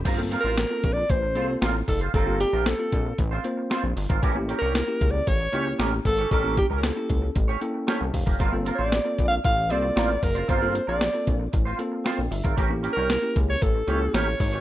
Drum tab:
CC |x---------------|----------------|----------------|----------------|
HH |x-x-x-x-x-x-x-ox|x-x-x-x-x-x-x-ox|x-x-x-x-x-x-x-ox|x-x-x-x-x-x-x-o-|
SD |----o-------o---|----o-------o---|----o-------o---|----o-------o---|
BD |o-----o-o-----o-|o-----o-o------o|o-----o-o-----o-|o-o---o-o-----oo|

CC |----------------|----------------|----------------|
HH |x-x-x-x-x-x-x-ox|x-x-x-x-x-x-x-ox|x-x-x-x-x-x-x-ox|
SD |----o-------o---|----o-------o---|----o-------o---|
BD |o-----o-o-----o-|o-----o-o------o|o-----o-o-----o-|